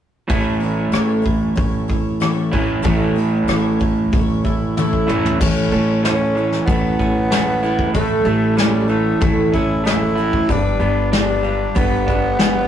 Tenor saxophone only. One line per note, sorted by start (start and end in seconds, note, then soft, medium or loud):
4.44 4.74 E4 medium
4.77 5.42 E4 medium
5.41 6.04 C#4 medium
6.04 6.63 C#4 medium
6.66 7.90 B3 medium
7.92 8.59 A3 medium
8.57 8.90 G3 medium
8.89 9.26 A3 medium
9.54 9.83 E4 medium
9.86 10.52 E4 medium
10.50 11.12 D4 medium
11.13 11.78 D4 medium
11.77 12.68 B3 loud